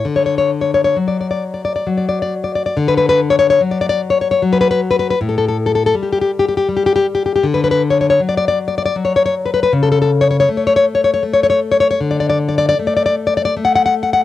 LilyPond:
\new Staff \with { instrumentName = "Nylon-string guitar" } { \time 3/4 \key d \major \tempo 4 = 78 << { r32 cis''32 cis''32 cis''32 r32 cis''32 cis''32 cis''32 r32 d''32 d''32 d''32 r32 d''32 d''32 d''32 r32 d''32 d''32 d''32 r32 d''32 d''32 d''32 | r32 b'32 b'32 b'32 r32 cis''32 cis''32 cis''32 r32 d''32 d''32 d''32 r32 cis''32 cis''32 cis''32 r32 b'32 b'32 b'32 r32 b'32 b'32 b'32 | r32 a'32 a'32 a'32 r32 a'32 a'32 a'32 r32 g'32 g'32 g'32 r32 g'32 g'32 g'32 r32 g'32 g'32 g'32 r32 g'32 g'32 g'32 | r32 b'32 b'32 b'32 r32 cis''32 cis''32 cis''32 r32 d''32 d''32 d''32 r32 d''32 d''32 d''32 r32 cis''32 cis''32 cis''32 r32 b'32 b'32 b'32 |
r32 a'32 a'32 a'32 r32 cis''32 cis''32 cis''32 r32 cis''32 cis''32 cis''32 r32 cis''32 cis''32 cis''32 r32 cis''32 cis''32 cis''32 r32 cis''32 cis''32 cis''32 | r32 d''32 d''32 d''32 r32 d''32 d''32 d''32 r32 d''32 d''32 d''32 r32 d''32 d''32 d''32 r32 fis''32 fis''32 fis''32 r32 fis''32 fis''32 r32 | } \\ { d4 fis4 fis4 | d4 fis4 fis4 | a,4 g4 g4 | d4 fis4 fis4 |
cis4 a4 a4 | d4 a4 a4 | } >> }